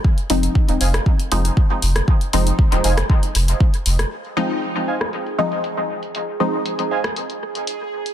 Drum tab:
HH |-xox-xox-xox--ox|-xox-xox-xox-xox|x---xx-xxx-xx--x|x---xx-xxx-xx--x|
SD |-------r-------r|-------r-------r|-------r--------|-------r--------|
BD |o---o---o---o---|o---o---o---o---|----------------|----------------|